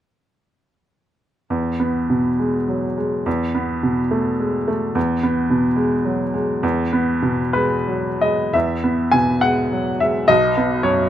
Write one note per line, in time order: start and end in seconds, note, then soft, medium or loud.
1.50 3.22 E2 soft
1.80 2.27 B3 soft
2.10 2.57 B2 soft
2.39 2.85 G#3 soft
2.68 2.97 F#3 soft
2.98 3.26 G#3 soft
3.26 4.92 E2 soft
3.55 4.00 B3 soft
3.83 4.29 B2 soft
4.11 4.56 A3 soft
4.40 4.68 G#3 soft
4.68 4.96 A3 soft
4.95 6.59 E2 medium
5.23 5.66 B3 soft
5.50 5.93 B2 soft
5.76 6.22 G#3 soft
6.05 6.34 F#3 soft
6.34 6.81 G#3 soft
6.63 8.50 E2 medium
6.93 7.41 B3 soft
7.22 7.73 B2 soft
7.53 8.08 G#3 soft
7.53 8.21 B4 medium
7.88 8.22 F#3 soft
8.21 8.54 G#3 soft
8.21 8.54 D#5 soft
8.54 10.25 E2 soft
8.54 9.13 E5 medium
8.84 9.31 B3 soft
9.12 9.60 B2 soft
9.12 9.42 G#5 medium
9.41 9.89 G#3 soft
9.41 10.00 F#5 medium
9.72 10.01 F#3 soft
10.00 10.29 G#3 soft
10.00 10.29 E5 medium
10.28 11.09 B1 medium
10.28 10.84 D#5 medium
10.57 11.02 B3 soft
10.83 11.09 F#2 soft
10.83 11.09 C#5 medium